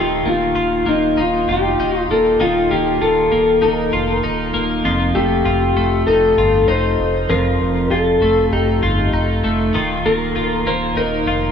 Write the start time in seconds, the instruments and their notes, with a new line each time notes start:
Already playing: sub bass D#1, clean electric guitar D#3 D#4 F4, electric slide guitar G4
0.25 sub bass D#1, clean electric guitar A#3, electric slide guitar F4
0.55 sub bass D#1, clean electric guitar F4
0.86 sub bass D#1, clean electric guitar A#3, electric slide guitar D#4
1.17 sub bass D#1, clean electric guitar D#4, electric slide guitar F4
1.48 sub bass F1, clean electric guitar F4, electric slide guitar G4
1.79 sub bass D#1, clean electric guitar D#4
1.98 electric slide guitar F4
2.09 sub bass D#1, clean electric guitar A#3, electric slide guitar A4
2.40 sub bass D#1, clean electric guitar D#3 F4, electric slide guitar F4
2.71 sub bass D#1, clean electric guitar A#3, electric slide guitar G4
3.01 sub bass D#1, clean electric guitar F4, electric slide guitar A4
3.32 sub bass D#1, clean electric guitar A#3
3.62 sub bass D#1, clean electric guitar D#4, electric slide guitar A#4
3.93 sub bass F1, clean electric guitar F4
4.24 sub bass D#1, clean electric guitar D#4
4.54 sub bass D#1, clean electric guitar A#3
4.84 sub bass F1, clean electric guitar F2 F4
5.15 sub bass F1, clean electric guitar A3, electric slide guitar G4
5.45 sub bass F1, clean electric guitar F4
5.75 sub bass F1, clean electric guitar A3
6.06 sub bass F1, clean electric guitar D#4, electric slide guitar A4
6.37 sub bass G1, clean electric guitar F4
6.68 sub bass F1, clean electric guitar D#4, electric slide guitar C5
6.98 sub bass F1
7.29 sub bass F1, clean electric guitar F2 F4, electric slide guitar A#4
7.61 sub bass F1
7.90 sub bass F1, clean electric guitar F4, electric slide guitar A4
8.21 sub bass F1, clean electric guitar A3
8.52 sub bass F1, clean electric guitar D#4, electric slide guitar G4
8.82 sub bass G1, clean electric guitar F4
9.13 sub bass F1, clean electric guitar D#4
9.44 sub bass F1, clean electric guitar A3
9.74 sub bass D#1, clean electric guitar D#3 F4
10.05 sub bass D#1, clean electric guitar A#3, electric slide guitar A#4
10.35 sub bass D#1, clean electric guitar F4
10.66 sub bass D#1, clean electric guitar A#3, electric slide guitar C5
10.96 sub bass D#1, clean electric guitar D#4, electric slide guitar A#4
11.26 sub bass F1, clean electric guitar F4